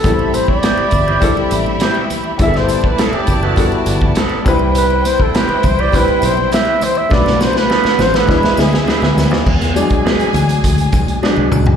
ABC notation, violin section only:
X:1
M:4/4
L:1/8
Q:1/4=102
K:Em
V:1 name="Violin section"
[Geb]8 | [Eda]6- [Eda] [Ecg]- | [Ecg]8 | [DBf]4 [B,^Ge]4 |
[^G^g]6- [Gg] z |]